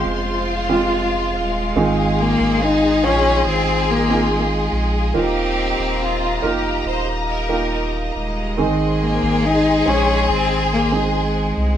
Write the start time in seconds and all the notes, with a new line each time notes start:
Already playing: C3 G#3 C4 F4 C5 F5 C6
0.06 F1 F4
0.69 G#3 C4 F4 G4
1.34 D#1 G#3
1.76 G#1 G#2 D#3 C4 D#4 F4 G#4 D#5 C6
2.21 A#3
2.40 G#1
2.63 D#4
3.04 A#1 C#4 D#4 F4 C5 G5
3.46 G#1 C4
3.91 A#3
4.09 C4 D#4 F4 G#4
4.32 G#3
4.39 A#3
4.46 G#3
4.72 A#1
5.14 D#1 A#2 A#3 C4 D#4 F4 G4 F5 A#5
5.79 D#1
6.00 F4
6.42 F1 A#3 D#4 F4 G4 A#4
6.86 D#1 C5
7.29 A#4
7.49 A#3 D#4 F4 G4
8.16 D#1 G#3
8.57 G#1 G#2 D#3 G#3 C4 D#4 G#4 C5 C6
9.03 A#3
9.23 G#1
9.46 D#4
9.86 A#1 G#3 C#4 D#4 G#4 C5
10.29 G#1 C4
10.73 A#3
10.92 G#3 C4 D#4 G#4
11.16 G#3
11.57 C2